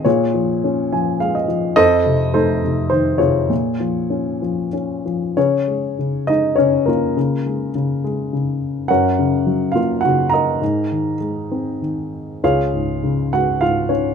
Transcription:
0.05 1.73 A#2 medium
0.05 1.45 F4 medium
0.05 1.45 G#4 medium
0.05 1.44 C#5 medium
0.34 0.91 F3 soft
0.64 1.74 C#4 medium
0.92 1.47 F3 medium
0.92 1.19 G#5 medium
1.20 1.75 G#3 soft
1.20 1.33 F5 medium
1.35 1.74 D#5 medium
1.48 1.76 F3 medium
1.76 3.46 F2 medium
1.76 2.32 A4 medium
1.76 2.32 C5 medium
1.76 2.36 D#5 loud
2.06 2.62 C3 medium
2.34 3.47 A3 medium
2.34 3.17 D#4 medium
2.34 3.17 A4 medium
2.34 2.88 C5 medium
2.64 3.18 C3 soft
2.90 3.49 D#3 medium
2.90 3.21 C5 medium
3.18 3.49 C3 soft
3.18 4.69 F4 medium
3.18 4.68 G#4 soft
3.18 4.68 C#5 medium
3.50 5.32 A#2 medium
3.80 4.40 F3 soft
4.10 4.72 C#4 soft
4.42 5.04 F3 soft
4.73 5.34 C#4 soft
5.06 5.36 F3 soft
5.37 5.97 C#3 soft
5.37 6.24 C#4 medium
5.37 6.24 G#4 medium
5.37 6.30 C#5 medium
5.68 6.27 G#3 soft
5.99 6.57 C#3 soft
6.27 7.14 G#3 soft
6.27 6.56 D#4 medium
6.27 6.55 D#5 medium
6.56 7.15 C#3 soft
6.56 6.85 C#4 medium
6.56 6.87 C#5 medium
6.86 7.71 A#3 soft
6.86 7.71 F4 soft
6.86 7.69 A#4 medium
7.17 7.74 C#3 medium
7.46 8.03 G#3 soft
7.75 8.31 C#3 soft
8.04 8.87 G#3 soft
8.33 8.88 C#3 soft
8.88 10.58 F#2 medium
8.88 9.71 F#4 medium
8.88 9.71 A#4 medium
8.88 9.71 C#5 medium
8.88 9.77 F#5 medium
9.19 10.03 C#3 soft
9.46 10.58 F#3 soft
9.72 10.59 A#3 soft
9.72 10.02 F4 medium
9.72 10.03 F5 medium
10.01 10.31 F#4 medium
10.01 10.32 F#5 medium
10.05 10.60 C#3 soft
10.30 11.16 D#5 medium
10.30 11.15 A#5 medium
10.34 11.17 A#4 medium
10.62 12.38 G#2 medium
10.91 11.80 D#3 soft
11.21 12.39 G#3 soft
11.52 12.40 C4 soft
11.82 12.41 D#3 soft
12.43 14.14 C#2 soft
12.43 13.30 F4 medium
12.43 13.30 G#4 medium
12.43 13.30 C#5 medium
12.43 13.37 F5 medium
12.74 13.61 G#2 soft
13.03 14.14 C#3 soft
13.33 14.14 G#3 soft
13.33 13.60 F#4 medium
13.33 13.60 F#5 medium
13.61 14.14 G#2 soft
13.61 13.89 F4 medium
13.61 13.91 F5 medium
13.89 14.14 C#4 soft
13.89 14.14 C#5 medium

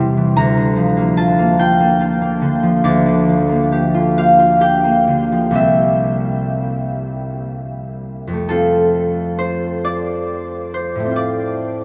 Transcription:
0.00 0.41 E2 medium
0.00 0.40 C3 medium
0.00 0.16 E3 soft
0.00 0.41 G3 medium
0.00 0.40 E4 medium
0.00 0.41 G4 medium
0.00 0.41 E5 medium
0.00 0.40 G5 medium
0.00 0.41 C6 medium
0.17 0.40 E3 medium
0.36 2.83 D2 medium
0.36 4.27 A#5 loud
0.57 2.40 D3 soft
0.76 2.62 F3 medium
0.97 1.37 A#3 medium
1.17 1.58 F4 medium
1.17 1.88 A5 loud
1.38 1.79 A#3 medium
1.59 1.99 F4 medium
1.59 4.60 G5 medium
1.80 2.20 A#3 medium
2.01 3.93 F4 medium
2.21 3.48 A#3 medium
2.41 2.88 D3 medium
2.63 3.28 F3 medium
2.84 5.61 D2 medium
2.84 5.61 D5 medium
3.06 5.06 D3 soft
3.29 5.31 F3 soft
3.49 4.83 A#3 soft
3.72 4.17 G4 medium
3.94 4.38 F4 medium
4.17 4.60 G4 medium
4.17 5.61 F5 medium
4.39 5.61 F4 soft
4.61 5.53 G4 medium
4.61 8.51 G5 loud
4.84 5.60 A#3 medium
5.07 5.60 D3 soft
5.32 5.61 F3 soft
5.51 8.49 C2 medium
5.51 8.50 G3 soft
5.51 8.49 C4 soft
5.51 8.51 G4 soft
5.55 8.52 E5 medium
8.27 11.10 F2 soft
8.33 10.99 A3 soft
8.49 11.04 C4 medium
8.49 11.10 F4 medium
8.49 11.84 A4 medium
9.39 10.73 C5 medium
9.85 11.15 D5 medium
10.74 11.84 C5 medium
10.95 11.84 A2 soft
11.00 11.84 A3 soft
11.05 11.84 C4 soft
11.11 11.84 F4 soft
11.16 11.84 D5 medium

